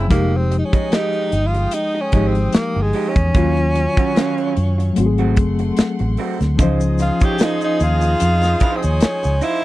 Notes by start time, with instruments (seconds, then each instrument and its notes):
0.08 fingered electric bass F1, reed electric piano F3 G#3, clean electric guitar G#3 D#4, string section G#3 G5 D#6, tenor saxophone A#3, kick, closed hi-hat
0.12 reed electric piano D#4 G4, clean electric guitar G4
0.37 tenor saxophone C4
0.51 muted clean electric guitar stroke, closed hi-hat
0.58 tenor saxophone D#4
0.65 tenor saxophone C#4
0.73 clean electric guitar G#3 D#4 G#4, muted fingered electric bass stroke, kick, closed hi-hat
0.92 clean electric guitar G#3 D#4 G4, tenor saxophone D#4, snare, closed hi-hat
1.13 closed hi-hat
1.32 fingered electric bass G1, muted clean electric guitar stroke, closed hi-hat
1.47 tenor saxophone F4
1.54 muted clean electric guitar stroke, closed hi-hat
1.71 tenor saxophone D#4, muted clean electric guitar stroke, closed hi-hat
1.95 muted clean electric guitar stroke
2.01 tenor saxophone C#4
2.12 fingered electric bass G#1, reed electric piano F3 G#3 D#4 G4, clean electric guitar G#3 D#4 G4, kick, closed hi-hat
2.27 tenor saxophone C4
2.35 muted clean electric guitar stroke, closed hi-hat
2.52 tenor saxophone A#3, muted clean electric guitar stroke, muted fingered electric bass stroke, snare, closed hi-hat
2.76 fingered electric bass G1, muted clean electric guitar stroke
2.82 tenor saxophone G#3
2.93 clean electric guitar G#3 D#4 G4, open hi-hat
3.09 tenor saxophone C#4
3.16 fingered electric bass E2, muted clean electric guitar stroke, kick, closed hi-hat
3.32 fingered electric bass D#2, reed electric piano D#3 F#3, string section F#3 F5 C#6, clean electric guitar F#3 C#4, kick, closed hi-hat
3.36 reed electric piano C#4 F4, clean electric guitar F4
3.57 closed hi-hat
3.75 muted clean electric guitar stroke, closed hi-hat
3.97 clean electric guitar F#3 C#4 F#4, muted fingered electric bass stroke, kick, closed hi-hat
4.15 clean electric guitar F#3 C#4 F4, snare, closed hi-hat
4.38 closed hi-hat
4.56 fingered electric bass F#2, muted clean electric guitar stroke, closed hi-hat
4.78 muted clean electric guitar stroke, closed hi-hat
4.93 reed electric piano F#3 A3, string section A3, muted clean electric guitar stroke, closed hi-hat
4.97 fingered electric bass G#1, reed electric piano C4 F#4, string section F#5 C6
5.06 reed electric piano G#4
5.18 clean electric guitar A3 C4 F#4, closed hi-hat
5.36 fingered electric bass F#1, muted clean electric guitar stroke, kick, closed hi-hat
5.59 muted clean electric guitar stroke, closed hi-hat
5.77 muted clean electric guitar stroke, muted fingered electric bass stroke, snare, closed hi-hat
5.99 fingered electric bass A1, muted clean electric guitar stroke, closed hi-hat
6.17 clean electric guitar A3 C4 F#4, open hi-hat
6.41 fingered electric bass D2, muted clean electric guitar stroke, snare, closed hi-hat
6.56 fingered electric bass C#2, reed electric piano E3 C#4, horn section F3 D#4 G#4, clean electric guitar D#4 F4, string section C5 D#5 D#6, kick, closed hi-hat, shaker
6.60 reed electric piano F3 C5 D#5, clean electric guitar C5
6.81 shaker
6.98 tenor saxophone F4, muted clean electric guitar stroke, closed hi-hat, shaker
7.20 clean electric guitar D#4 F4 C#5, muted fingered electric bass stroke, kick, closed hi-hat, shaker
7.25 tenor saxophone G4
7.39 clean electric guitar D#4 F4 C5, snare, closed hi-hat, shaker
7.44 tenor saxophone D#4
7.61 tenor saxophone D#4, shaker
7.80 fingered electric bass D#2, tenor saxophone F4, muted clean electric guitar stroke, closed hi-hat, shaker
8.01 muted clean electric guitar stroke, closed hi-hat, shaker
8.20 fingered electric bass F2, muted clean electric guitar stroke, closed hi-hat, shaker
8.41 muted clean electric guitar stroke, snare, closed hi-hat, shaker
8.60 clean electric guitar D#4 F4 C5, kick, closed hi-hat
8.76 tenor saxophone C4
8.82 fingered electric bass D#2, tenor saxophone C#4, muted clean electric guitar stroke, closed hi-hat, shaker
9.00 muted clean electric guitar stroke, muted fingered electric bass stroke, snare, closed hi-hat, shaker
9.23 fingered electric bass C#2, muted clean electric guitar stroke, closed hi-hat, shaker
9.41 clean electric guitar D#4 F4 C5, tenor saxophone E4, open hi-hat, shaker